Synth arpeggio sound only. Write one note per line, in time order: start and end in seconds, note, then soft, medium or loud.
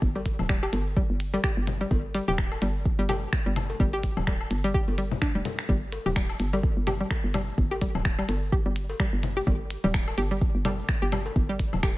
0.16 0.20 G3 medium
0.49 0.58 G3 loud
0.63 0.67 G4 loud
0.97 1.03 G3 medium
1.34 1.40 G3 loud
1.44 1.50 G4 loud
1.81 1.85 G3 medium
2.15 2.24 G3 loud
2.28 2.33 G4 loud
2.62 2.68 G3 medium
2.99 3.06 G3 loud
3.09 3.15 G4 loud
3.46 3.51 G3 medium
3.80 3.89 G3 loud
3.93 3.98 G4 loud
4.27 4.33 G3 medium
4.64 4.71 G3 loud
4.74 4.81 G4 loud
4.98 5.04 G3 medium
5.22 5.25 D4 loud
5.35 5.38 G3 medium
5.69 5.78 G3 loud
6.06 6.11 G4 loud
6.16 6.22 G3 medium
6.53 6.60 G3 loud
6.87 6.93 G4 loud
7.00 7.05 G3 medium
7.34 7.43 G3 loud
7.71 7.76 G4 loud
7.81 7.88 G3 medium
8.19 8.26 G3 loud
8.52 8.58 G4 loud
8.66 8.70 G3 medium
9.00 9.09 G3 loud
9.37 9.41 G4 loud
9.47 9.53 G3 medium
9.84 9.91 G3 loud
10.18 10.24 G4 loud
10.31 10.36 G3 medium
10.65 10.74 G3 loud
11.02 11.07 G4 loud
11.12 11.18 G3 medium
11.49 11.56 G3 loud
11.83 11.89 G4 loud